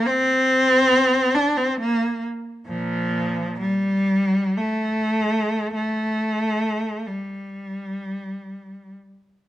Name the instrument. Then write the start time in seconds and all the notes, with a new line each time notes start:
cello
0.06 C4
1.35 D4
1.57 C4
1.80 A#3
2.67 A#2 F3
3.60 G3
4.58 A3
5.74 A3
7.06 G3